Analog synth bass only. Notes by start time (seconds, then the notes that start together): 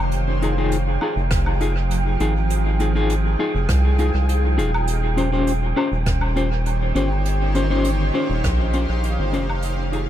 Already playing: F1
1.16 F1
2.20 G#1
3.55 F1
3.69 C2
4.14 C2
4.58 D#1
5.92 D#1
6.95 G1
8.30 D#1
8.44 A#1
8.89 A#1
9.19 G1
9.33 F1